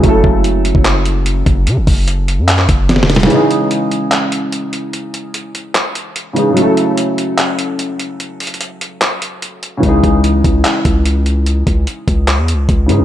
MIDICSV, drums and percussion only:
0, 0, Header, 1, 2, 480
1, 0, Start_track
1, 0, Key_signature, 4, "minor"
1, 0, Tempo, 408163
1, 41, Time_signature, 4, 2, 24, 8
1, 15343, End_track
2, 0, Start_track
2, 0, Title_t, "Drums"
2, 42, Note_on_c, 9, 36, 118
2, 42, Note_on_c, 9, 42, 77
2, 159, Note_off_c, 9, 36, 0
2, 160, Note_off_c, 9, 42, 0
2, 282, Note_on_c, 9, 36, 95
2, 399, Note_off_c, 9, 36, 0
2, 521, Note_on_c, 9, 42, 92
2, 639, Note_off_c, 9, 42, 0
2, 763, Note_on_c, 9, 42, 69
2, 880, Note_on_c, 9, 36, 102
2, 881, Note_off_c, 9, 42, 0
2, 998, Note_off_c, 9, 36, 0
2, 1001, Note_on_c, 9, 39, 115
2, 1001, Note_on_c, 9, 42, 81
2, 1118, Note_off_c, 9, 42, 0
2, 1119, Note_off_c, 9, 39, 0
2, 1241, Note_on_c, 9, 42, 85
2, 1358, Note_off_c, 9, 42, 0
2, 1481, Note_on_c, 9, 42, 84
2, 1598, Note_off_c, 9, 42, 0
2, 1721, Note_on_c, 9, 36, 103
2, 1721, Note_on_c, 9, 42, 66
2, 1838, Note_off_c, 9, 36, 0
2, 1839, Note_off_c, 9, 42, 0
2, 1962, Note_on_c, 9, 42, 78
2, 2080, Note_off_c, 9, 42, 0
2, 2202, Note_on_c, 9, 36, 102
2, 2203, Note_on_c, 9, 46, 80
2, 2319, Note_off_c, 9, 36, 0
2, 2320, Note_off_c, 9, 46, 0
2, 2442, Note_on_c, 9, 42, 93
2, 2559, Note_off_c, 9, 42, 0
2, 2684, Note_on_c, 9, 42, 67
2, 2802, Note_off_c, 9, 42, 0
2, 2921, Note_on_c, 9, 42, 81
2, 2922, Note_on_c, 9, 39, 117
2, 3039, Note_off_c, 9, 42, 0
2, 3040, Note_off_c, 9, 39, 0
2, 3042, Note_on_c, 9, 39, 74
2, 3160, Note_off_c, 9, 39, 0
2, 3161, Note_on_c, 9, 36, 98
2, 3161, Note_on_c, 9, 42, 84
2, 3278, Note_off_c, 9, 42, 0
2, 3279, Note_off_c, 9, 36, 0
2, 3401, Note_on_c, 9, 42, 87
2, 3402, Note_on_c, 9, 38, 64
2, 3481, Note_off_c, 9, 38, 0
2, 3481, Note_on_c, 9, 38, 65
2, 3519, Note_off_c, 9, 42, 0
2, 3561, Note_off_c, 9, 38, 0
2, 3561, Note_on_c, 9, 38, 83
2, 3641, Note_off_c, 9, 38, 0
2, 3641, Note_on_c, 9, 38, 85
2, 3641, Note_on_c, 9, 42, 65
2, 3701, Note_off_c, 9, 42, 0
2, 3701, Note_on_c, 9, 42, 57
2, 3720, Note_off_c, 9, 38, 0
2, 3720, Note_on_c, 9, 38, 110
2, 3761, Note_off_c, 9, 42, 0
2, 3761, Note_on_c, 9, 42, 49
2, 3801, Note_off_c, 9, 38, 0
2, 3801, Note_on_c, 9, 38, 102
2, 3821, Note_off_c, 9, 42, 0
2, 3821, Note_on_c, 9, 42, 38
2, 3882, Note_off_c, 9, 42, 0
2, 3882, Note_on_c, 9, 42, 73
2, 3919, Note_off_c, 9, 38, 0
2, 3999, Note_off_c, 9, 42, 0
2, 4123, Note_on_c, 9, 42, 70
2, 4240, Note_off_c, 9, 42, 0
2, 4361, Note_on_c, 9, 42, 91
2, 4479, Note_off_c, 9, 42, 0
2, 4604, Note_on_c, 9, 42, 70
2, 4721, Note_off_c, 9, 42, 0
2, 4841, Note_on_c, 9, 39, 111
2, 4841, Note_on_c, 9, 42, 81
2, 4958, Note_off_c, 9, 42, 0
2, 4959, Note_off_c, 9, 39, 0
2, 5081, Note_on_c, 9, 42, 80
2, 5198, Note_off_c, 9, 42, 0
2, 5321, Note_on_c, 9, 42, 80
2, 5438, Note_off_c, 9, 42, 0
2, 5561, Note_on_c, 9, 42, 63
2, 5678, Note_off_c, 9, 42, 0
2, 5802, Note_on_c, 9, 42, 73
2, 5920, Note_off_c, 9, 42, 0
2, 6043, Note_on_c, 9, 42, 69
2, 6161, Note_off_c, 9, 42, 0
2, 6281, Note_on_c, 9, 42, 92
2, 6399, Note_off_c, 9, 42, 0
2, 6524, Note_on_c, 9, 42, 73
2, 6642, Note_off_c, 9, 42, 0
2, 6762, Note_on_c, 9, 39, 106
2, 6762, Note_on_c, 9, 42, 79
2, 6879, Note_off_c, 9, 42, 0
2, 6880, Note_off_c, 9, 39, 0
2, 7001, Note_on_c, 9, 42, 84
2, 7119, Note_off_c, 9, 42, 0
2, 7242, Note_on_c, 9, 42, 83
2, 7359, Note_off_c, 9, 42, 0
2, 7483, Note_on_c, 9, 42, 64
2, 7600, Note_off_c, 9, 42, 0
2, 7723, Note_on_c, 9, 42, 75
2, 7841, Note_off_c, 9, 42, 0
2, 7964, Note_on_c, 9, 42, 70
2, 8082, Note_off_c, 9, 42, 0
2, 8203, Note_on_c, 9, 42, 92
2, 8320, Note_off_c, 9, 42, 0
2, 8445, Note_on_c, 9, 42, 73
2, 8563, Note_off_c, 9, 42, 0
2, 8682, Note_on_c, 9, 39, 111
2, 8682, Note_on_c, 9, 42, 77
2, 8799, Note_off_c, 9, 42, 0
2, 8800, Note_off_c, 9, 39, 0
2, 8921, Note_on_c, 9, 42, 81
2, 9039, Note_off_c, 9, 42, 0
2, 9162, Note_on_c, 9, 42, 83
2, 9279, Note_off_c, 9, 42, 0
2, 9402, Note_on_c, 9, 42, 65
2, 9519, Note_off_c, 9, 42, 0
2, 9643, Note_on_c, 9, 42, 75
2, 9760, Note_off_c, 9, 42, 0
2, 9882, Note_on_c, 9, 42, 60
2, 9883, Note_on_c, 9, 46, 78
2, 9962, Note_off_c, 9, 42, 0
2, 9962, Note_on_c, 9, 42, 59
2, 10000, Note_off_c, 9, 46, 0
2, 10041, Note_off_c, 9, 42, 0
2, 10041, Note_on_c, 9, 42, 60
2, 10121, Note_off_c, 9, 42, 0
2, 10121, Note_on_c, 9, 42, 94
2, 10239, Note_off_c, 9, 42, 0
2, 10364, Note_on_c, 9, 42, 73
2, 10481, Note_off_c, 9, 42, 0
2, 10601, Note_on_c, 9, 42, 80
2, 10602, Note_on_c, 9, 39, 110
2, 10719, Note_off_c, 9, 42, 0
2, 10720, Note_off_c, 9, 39, 0
2, 10841, Note_on_c, 9, 42, 78
2, 10959, Note_off_c, 9, 42, 0
2, 11081, Note_on_c, 9, 42, 82
2, 11199, Note_off_c, 9, 42, 0
2, 11322, Note_on_c, 9, 42, 63
2, 11439, Note_off_c, 9, 42, 0
2, 11562, Note_on_c, 9, 36, 111
2, 11562, Note_on_c, 9, 42, 76
2, 11680, Note_off_c, 9, 36, 0
2, 11680, Note_off_c, 9, 42, 0
2, 11802, Note_on_c, 9, 36, 99
2, 11803, Note_on_c, 9, 42, 70
2, 11919, Note_off_c, 9, 36, 0
2, 11921, Note_off_c, 9, 42, 0
2, 12042, Note_on_c, 9, 42, 89
2, 12159, Note_off_c, 9, 42, 0
2, 12282, Note_on_c, 9, 36, 90
2, 12284, Note_on_c, 9, 42, 72
2, 12400, Note_off_c, 9, 36, 0
2, 12401, Note_off_c, 9, 42, 0
2, 12521, Note_on_c, 9, 42, 79
2, 12522, Note_on_c, 9, 39, 112
2, 12638, Note_off_c, 9, 42, 0
2, 12639, Note_off_c, 9, 39, 0
2, 12760, Note_on_c, 9, 42, 83
2, 12761, Note_on_c, 9, 36, 97
2, 12878, Note_off_c, 9, 42, 0
2, 12879, Note_off_c, 9, 36, 0
2, 13001, Note_on_c, 9, 42, 84
2, 13118, Note_off_c, 9, 42, 0
2, 13242, Note_on_c, 9, 42, 64
2, 13359, Note_off_c, 9, 42, 0
2, 13482, Note_on_c, 9, 42, 75
2, 13599, Note_off_c, 9, 42, 0
2, 13721, Note_on_c, 9, 36, 97
2, 13722, Note_on_c, 9, 42, 70
2, 13839, Note_off_c, 9, 36, 0
2, 13840, Note_off_c, 9, 42, 0
2, 13961, Note_on_c, 9, 42, 89
2, 14078, Note_off_c, 9, 42, 0
2, 14202, Note_on_c, 9, 36, 88
2, 14203, Note_on_c, 9, 42, 75
2, 14319, Note_off_c, 9, 36, 0
2, 14321, Note_off_c, 9, 42, 0
2, 14440, Note_on_c, 9, 42, 83
2, 14441, Note_on_c, 9, 39, 106
2, 14558, Note_off_c, 9, 42, 0
2, 14559, Note_off_c, 9, 39, 0
2, 14680, Note_on_c, 9, 42, 81
2, 14798, Note_off_c, 9, 42, 0
2, 14921, Note_on_c, 9, 36, 100
2, 14921, Note_on_c, 9, 42, 86
2, 15038, Note_off_c, 9, 42, 0
2, 15039, Note_off_c, 9, 36, 0
2, 15160, Note_on_c, 9, 42, 64
2, 15278, Note_off_c, 9, 42, 0
2, 15343, End_track
0, 0, End_of_file